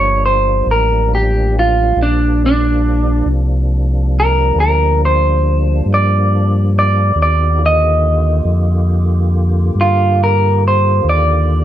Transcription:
Already playing: G1 F3 G3 A#3 D4 C#5
0.26 C5
0.66 A1
0.71 A#4
1.15 G4
1.59 F4
1.96 A#1 F3 G3 A#3 D4
2.03 D4
2.46 D4
3.25 C2
4.20 A#4
4.55 D2
4.60 A#4
5.05 C5
5.86 G2
5.94 D5
6.79 D5
7.15 D#2 B3 D#4 F#4 G#4
7.22 D5
7.58 D3 A#3 F4 G4
7.66 D#5
8.45 F2
9.75 G2
9.81 F4
10.24 A#4
10.68 C5
11.04 D#2
11.09 D5

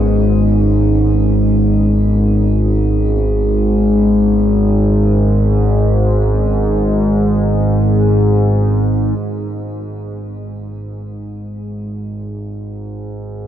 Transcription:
Already playing: G#1 G#2 G#3 B3 C#4 D#4
9.18 G#1 G#2

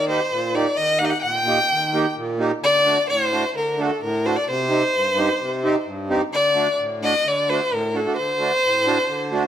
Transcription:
Already playing: D#3
0.08 A#3 D#4 G4 C5
0.31 A#2
0.54 A#3 D#4 G4 D5
0.77 D#3 D#5
0.99 A#3 D#4 G4 F#5
1.05 D#5
1.10 F#5
1.22 A#2 G5
1.46 A#3 D#4 G4
1.71 D#3
1.94 A#3 D#4 G4
2.17 A#2
2.38 A#3 D#4 G4
2.63 D3 D5
2.85 A3 D4 F#4
3.09 A2 C5
3.32 A3 D4 F#4
3.55 D3 A#4
3.78 A3 D4 F#4
3.82 A4
4.02 A2 A#4
4.25 A3 D4 F#4 C5
4.37 D5
4.48 C3 C5
4.69 C4 D#4 G4
4.94 G2
5.17 C4 D#4 G4
5.40 C3
5.63 C4 D#4 G4
5.86 G2
6.10 C4 D#4 G4
6.33 D3 D5
6.54 A3 D4 F#4
6.79 A2
7.02 A3 D4 F#4 D#5
7.25 D3 D5
7.49 A3 D4 F#4 C5
7.72 A2 A#4
7.94 D4 F#4 A4
8.05 A3 D4 F#4
8.17 D3 C5
8.40 A3 D4 F#4
8.64 A2
8.86 A3 D4 F#4
9.08 D3
9.31 A3 D4 F#4

